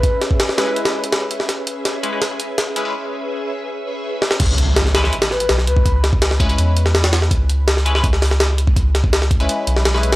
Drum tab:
CC |----------------|----------------|----------------|x---------------|
HH |x-x-x-x-xx-xx-x-|x-x-x-x-x-x-x-x-|----------------|x-x-x-x-xx-xx-x-|
SD |--o-ooo--o--o--o|o---o---o---o---|--------------oo|----oooo-oo-oo--|
BD |o--o------------|----------------|----------------|o--------------o|

CC |----------------|----------------|----------------|
HH |x-x-x-xxx-x-xxx-|x-x-x-x-x-o-x-x-|x-x-x-xxx-x-x-xx|
SD |--o-oo-----ooooo|----oo-o-oooo---|--o-oo-----ooo-o|
BD |o--o--o---------|o-------o------o|o--o--o---------|